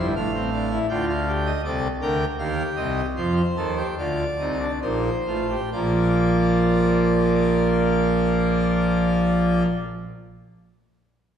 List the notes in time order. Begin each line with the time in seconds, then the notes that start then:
Already playing: G1
0.00 G2 E4
0.16 A1 A2 D4 F5
0.34 C4
0.53 D4
0.70 E4
0.89 D2 D3 F4 G5
1.09 F5
1.27 G4
1.46 D#5
1.64 C2 C3 A4 D5
2.01 D2 D3 A#4 G5
2.39 D#2 D#3 G4 F5
2.76 C2 C3 D#5
3.16 F2 F3 F4 C5
3.56 D#2 D#3 A4
3.77 G4
3.98 D2 D3 F4 D5
4.39 C2 C3 D#4
4.60 D4
4.82 A#1 A#2 D#4 C5
5.27 A1 A2 F4
5.50 G4
5.72 A#1 A#2 F3 A#3 F4 D5